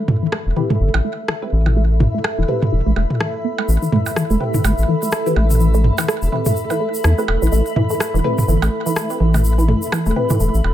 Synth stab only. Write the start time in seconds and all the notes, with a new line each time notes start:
0.56 C4 E4 G4 B4
1.42 C4 E4 G4 B4
2.48 C4 E4 G4 B4
4.40 C4 E4 G4 B4
5.26 C4 E4 G4 B4
6.32 C4 E4 G4 B4
7.18 C4 E4 G4 B4
8.24 C4 E4 G4 B4
9.10 C4 E4 G4 B4
10.16 C4 E4 G4 B4